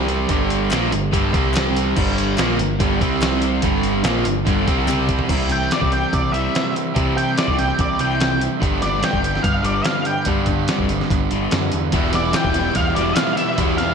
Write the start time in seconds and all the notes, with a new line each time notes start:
Already playing: C2 C3 G3 C4
0.08 closed hi-hat
0.29 G1 G2 D3 G3, kick, closed hi-hat
0.50 closed hi-hat
0.70 A#1 A#2 F3 A#3, snare, clap, closed hi-hat
0.92 G1 G2 D3, closed hi-hat
1.11 G1 G2 D3 G3, kick, closed hi-hat
1.34 C2 C3 G3 C4, kick, closed hi-hat
1.54 snare, clap, closed hi-hat
1.76 closed hi-hat
1.97 G1 G2 D3 G3, kick, crash
2.18 closed hi-hat
2.38 A#1 A#2 F3 A#3, snare, clap, closed hi-hat
2.59 G1 G2 D3, closed hi-hat
2.79 G1 G2 D3 G3, kick, closed hi-hat
2.99 C2 C3 G3 C4, kick, closed hi-hat
3.22 snare, clap, closed hi-hat
3.42 closed hi-hat
3.62 G1 G2 D3 G3, kick, closed hi-hat
3.83 closed hi-hat
4.03 A#1 A#2 F3 A#3, snare, clap, closed hi-hat
4.25 G1 G2 D3, closed hi-hat
4.47 G1 G2 D3 G3, kick, closed hi-hat
4.67 C2 C3 G3 C4, kick, closed hi-hat
4.87 C2 C3 G3 C4, clap, closed hi-hat, high tom
5.09 kick, closed hi-hat
5.19 floor tom
5.28 C2 C3 E3 G3 C4 E4, kick, closed hi-hat, crash
5.50 C3 E3 G5, closed hi-hat
5.71 C3 E3 G3 D5, snare, closed hi-hat
5.82 C2, kick
5.92 C3 E3 G5, closed hi-hat
6.13 C3 E3 D5, kick, closed hi-hat
6.32 C2 C3 E3 G3 E5, closed hi-hat
6.54 C3 E3, snare, closed hi-hat
6.75 C3 E3, closed hi-hat
6.94 C3 E3 G3 C4 E4, kick, closed hi-hat
7.16 C3 E3 G5, closed hi-hat
7.37 C3 E3 G3 D5, snare, closed hi-hat
7.48 C2, kick
7.58 C3 E3 G5, snare, closed hi-hat
7.79 C2 C3 E3 D5, kick, closed hi-hat
7.99 C2 C3 E3 G3 G5, closed hi-hat
8.20 C3 E3, snare, closed hi-hat
8.40 C3 E3, closed hi-hat
8.60 G1 G2 D3 G3 B3 D4, kick, closed hi-hat
8.80 G2 D3 D5, snare, closed hi-hat
8.98 G2 D3 G3
9.03 G5, snare, closed hi-hat
9.13 G1, kick
9.21 G2 D3, closed hi-hat
9.35 snare
9.42 G2 D3 F5, kick, closed hi-hat
9.63 G1 G2 D3 G3 D5, closed hi-hat
9.85 G2 D3 F5, snare, closed hi-hat
10.05 G2 D3 G5, closed hi-hat
10.25 G2 D3 G3 B3 D4, kick, closed hi-hat
10.46 G2 D3, kick, closed hi-hat
10.68 G2 D3 G3, snare, closed hi-hat
10.79 G1, kick
10.89 G2 D3, closed hi-hat
11.01 snare
11.10 G1 G2 D3, kick, closed hi-hat
11.31 G1 G2 D3 G3, closed hi-hat
11.51 F#2 G2 D3, snare, closed hi-hat
11.72 E2 G2 D3, closed hi-hat
11.92 E1 E2 B2 E3 G3 B3 E4, kick, closed hi-hat
12.12 E2 B2 E3 G3 B3 E4 D5, snare, closed hi-hat
12.32 E2 B2 E3 G3 B3 E4 G5, snare, clap, closed hi-hat
12.44 E1, kick
12.54 E2 B2 E3 G3 B3 E4, snare, closed hi-hat
12.75 E2 B2 E3 G3 B3 E4 F5, kick, closed hi-hat
12.95 E1 E2 B2 E3 G3 B3 E4 D5, closed hi-hat
13.16 E2 B2 E3 G3 B3 E4 F5, snare, clap, closed hi-hat
13.36 E2 B2 E3 G3 B3 E4 E5, closed hi-hat
13.57 E2 B2 E3 G3 B3 E4, kick, closed hi-hat
13.78 E2 B2 E3 G3 B3 E4 F5, snare, closed hi-hat